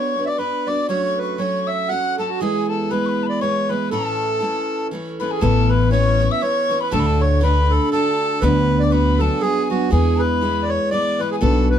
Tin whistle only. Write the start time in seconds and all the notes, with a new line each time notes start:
Already playing: C#6
0.28 D6
0.39 B5
0.68 D6
0.89 C#6
1.05 C#6
1.23 C#6
1.39 C#6
1.67 E6
1.89 F#6
2.19 A5
2.40 G#5
2.69 A5
2.91 B5
3.06 B5 C#6
3.23 A5 B5
3.42 C#6
3.70 B5
3.91 A5
5.20 B5
5.31 G#5
5.41 A5
5.70 B5
5.92 C#6
6.32 E6
6.42 C#6
6.81 B5
6.92 A5
7.00 B5
7.06 A5
7.22 C#6
7.43 B5
7.93 A5
8.43 B5
8.82 D6
8.93 B5
9.21 A5
9.43 G#5
9.92 G#5
10.21 B5
10.70 C#6
10.92 D6
11.21 B5
11.32 G#5
11.43 A5